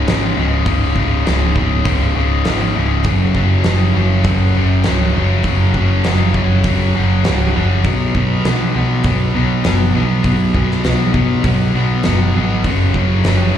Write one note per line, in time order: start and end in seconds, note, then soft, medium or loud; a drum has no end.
0.06 0.33 G#1 medium
0.06 0.36 C#2 medium
0.06 0.37 G#2 medium
0.06 0.37 C#3 medium
0.06 snare loud
0.06 open hi-hat soft
0.36 0.62 C#1 medium
0.36 0.65 C#2 medium
0.36 0.65 G#2 medium
0.36 0.66 C#3 medium
0.66 0.92 C#1 medium
0.66 0.95 C#2 medium
0.66 0.96 G#2 loud
0.66 0.96 C#3 loud
0.66 kick loud
0.66 open hi-hat soft
0.96 1.22 C#1 medium
0.96 1.24 C#2 medium
0.96 1.25 G#2 medium
0.96 1.25 C#3 medium
0.96 kick medium
1.26 1.53 C#1 medium
1.26 1.55 C#2 medium
1.26 1.56 G#2 medium
1.26 1.56 C#3 medium
1.26 snare medium
1.26 open hi-hat soft
1.56 1.82 C#1 medium
1.56 1.84 C#2 medium
1.56 1.85 G#2 medium
1.56 1.85 C#3 medium
1.56 kick medium
1.85 2.12 C#1 medium
1.85 2.14 C#2 medium
1.85 2.15 G#2 medium
1.85 2.15 C#3 medium
1.85 kick loud
1.85 open hi-hat soft
2.15 2.42 C#1 medium
2.15 2.45 C#2 medium
2.15 2.45 G#2 medium
2.15 2.46 C#3 medium
2.45 2.72 G#1 medium
2.45 2.75 C#2 medium
2.45 2.75 G#2 medium
2.45 2.77 C#3 medium
2.45 snare medium
2.45 open hi-hat soft
2.76 3.05 C#1 medium
2.76 3.04 C#2 medium
2.76 3.04 G#2 medium
2.76 3.05 C#3 medium
3.04 3.31 F#1 medium
3.04 3.35 F#2 medium
3.04 3.35 C#3 medium
3.04 3.37 F#3 medium
3.04 kick medium
3.04 open hi-hat soft
3.34 3.61 F#1 medium
3.34 3.64 F#2 medium
3.34 3.65 C#3 medium
3.34 3.65 F#3 medium
3.34 kick medium
3.64 3.92 F#1 medium
3.64 3.94 F#2 medium
3.64 3.95 C#3 medium
3.64 3.96 F#3 medium
3.64 snare loud
3.64 open hi-hat soft
3.95 4.22 F#1 medium
3.95 4.24 F#2 medium
3.95 4.25 C#3 medium
3.95 4.26 F#3 medium
4.24 4.51 F#1 medium
4.24 4.55 F#2 medium
4.24 4.55 C#3 medium
4.24 4.57 F#3 medium
4.24 kick loud
4.24 open hi-hat soft
4.56 4.83 F#1 medium
4.56 4.85 F#2 medium
4.56 4.86 C#3 medium
4.56 4.87 F#3 medium
4.84 5.12 C#1 medium
4.84 5.14 F#2 medium
4.84 5.15 C#3 medium
4.84 5.17 F#3 medium
4.84 snare loud
4.84 open hi-hat soft
5.16 5.42 F#1 medium
5.16 5.45 F#2 medium
5.16 5.46 C#3 medium
5.16 5.48 F#3 medium
5.44 5.71 F#1 medium
5.44 5.75 F#2 medium
5.44 5.76 C#3 medium
5.44 kick medium
5.44 open hi-hat soft
5.48 5.78 F#3 loud
5.74 6.01 F#1 medium
5.74 6.04 F#2 medium
5.74 6.06 C#3 medium
5.74 6.07 F#3 medium
5.74 kick medium
6.04 6.32 F#1 medium
6.04 6.35 F#2 medium
6.04 6.35 C#3 medium
6.04 6.36 F#3 medium
6.04 snare loud
6.04 open hi-hat soft
6.34 6.61 F#1 medium
6.34 6.64 F#2 medium
6.34 6.64 C#3 medium
6.34 6.66 F#3 medium
6.34 kick medium
6.64 6.91 F#1 medium
6.64 6.94 F#2 medium
6.64 6.94 C#3 medium
6.64 6.97 F#3 loud
6.64 kick medium
6.64 open hi-hat soft
6.95 7.22 F#1 medium
6.95 7.23 F#2 medium
6.95 7.24 C#3 medium
6.95 7.26 F#3 medium
7.24 7.52 C#1 medium
7.24 7.54 F#2 medium
7.24 7.55 C#3 medium
7.24 7.56 F#3 medium
7.24 snare loud
7.24 open hi-hat soft
7.55 7.82 F#1 medium
7.55 7.83 F#2 medium
7.55 7.84 C#3 medium
7.55 7.86 F#3 medium
7.84 8.11 B1 medium
7.84 8.14 B2 medium
7.84 8.15 F#3 medium
7.84 8.15 B3 medium
7.84 kick medium
7.84 open hi-hat soft
8.15 8.41 B1 medium
8.15 8.46 B2 medium
8.15 8.46 F#3 medium
8.15 8.47 B3 medium
8.15 kick medium
8.45 8.71 B1 medium
8.45 8.74 B2 medium
8.45 8.75 F#3 medium
8.45 8.76 B3 medium
8.45 snare loud
8.45 open hi-hat soft
8.75 9.01 B1 medium
8.75 9.02 B2 medium
8.75 9.04 F#3 medium
8.75 9.04 B3 medium
9.04 9.31 B1 medium
9.04 9.33 B2 medium
9.04 9.34 F#3 medium
9.04 9.35 B3 loud
9.04 kick loud
9.04 open hi-hat soft
9.35 9.61 B1 medium
9.35 9.63 B2 medium
9.35 9.65 F#3 medium
9.35 9.65 B3 medium
9.64 9.91 F#1 medium
9.64 9.93 B2 medium
9.64 9.95 F#3 medium
9.64 9.95 B3 medium
9.64 snare loud
9.64 open hi-hat soft
9.95 10.21 B1 medium
9.95 10.22 B2 medium
9.95 10.23 F#3 medium
9.95 10.24 B3 medium
10.23 10.51 B1 medium
10.23 10.53 B2 medium
10.23 10.55 F#3 medium
10.23 10.55 B3 loud
10.23 kick medium
10.23 open hi-hat soft
10.54 10.81 B1 medium
10.54 10.83 B2 medium
10.54 10.84 F#3 medium
10.54 10.84 B3 medium
10.54 kick medium
10.71 snare soft
10.84 11.11 B1 medium
10.84 11.11 B2 medium
10.84 11.13 F#3 medium
10.84 11.14 B3 medium
10.84 snare medium
10.84 open hi-hat soft
11.12 11.41 B1 medium
11.12 11.43 B2 medium
11.12 11.45 F#3 medium
11.12 11.45 B3 medium
11.12 kick medium
11.44 11.70 B1 medium
11.44 11.73 B2 medium
11.44 11.75 F#3 medium
11.44 11.75 B3 loud
11.44 kick loud
11.44 open hi-hat medium
11.74 12.01 B1 medium
11.74 12.04 B2 medium
11.74 12.06 F#3 medium
11.74 12.05 B3 medium
12.03 12.31 F#1 medium
12.03 12.34 B2 medium
12.03 12.35 F#3 medium
12.03 12.36 B3 medium
12.03 snare loud
12.03 open hi-hat soft
12.35 12.61 G#1 medium
12.35 12.63 B2 medium
12.35 12.65 F#3 medium
12.35 12.64 B3 medium
12.64 12.91 F#1 medium
12.64 12.96 F#2 medium
12.64 12.96 C#3 loud
12.64 12.97 F#3 medium
12.64 kick medium
12.64 open hi-hat soft
12.94 13.20 F#1 medium
12.94 13.26 F#2 medium
12.94 13.26 C#3 medium
12.94 13.28 F#3 medium
12.94 kick medium
13.24 13.51 F#1 medium
13.24 13.54 F#2 medium
13.24 13.54 C#3 medium
13.24 13.56 F#3 medium
13.24 snare loud
13.24 open hi-hat soft
13.54 13.58 F#2 medium